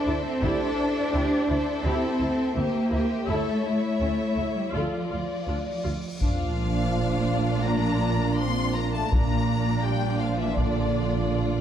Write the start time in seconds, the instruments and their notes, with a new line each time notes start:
Already playing: cello section D4, french horn section E4 C5, violin section A4 C5 E5
0.07 double bass section D2, viola section E4
0.25 cello section C4
0.42 double bass section D2, cello section D4, viola section E4 G4, violin section A4, taiko
1.12 double bass section D2, viola section C4 E4, violin section G4
1.48 double bass section D2, viola section E4, violin section A4
1.84 double bass section D2, cello section C4, viola section E4 G4
2.20 double bass section D2, viola section E4
2.56 double bass section D2, cello section A#3, viola section C4 E4, violin section G4
2.92 double bass section D2, viola section E4, violin section G4
3.28 double bass section D2, cello section A3, viola section E4 A4, french horn section E4 C#5, violin section A4 C#5 E5, cymbal swell
3.65 violin section E4
4.00 double bass section D2, cello section A3, viola section C#4 E4
4.37 double bass section D2, viola section E4
4.57 cello section G3
4.73 double bass section D2, cello section F3, french horn section F4 D5, viola section F4 A4, violin section F4 D5
5.11 double bass section D2, viola section F4
5.47 double bass section D2, viola section D4 F4
5.84 double bass section D2, viola section F4
6.20 double bass section A#1, cello section A#2, trombone section F3 D4, french horn section F3, viola section D4, violin section F4 D5 F5, taiko, sub drop
7.66 french horn section A#3, violin section A#5
8.39 french horn section C4, violin section C6
8.76 french horn section A#3, violin section A#5
8.94 french horn section A3, violin section A5
9.11 double bass section A#1, cello section A#2, trombone section F3 D4, french horn section A#3, viola section D4, violin section F4 D5 A#5, taiko
9.84 french horn section G3, violin section G5
10.20 french horn section F3, violin section F5
10.39 french horn section E3, violin section E5
10.57 french horn section D3, violin section D5, taiko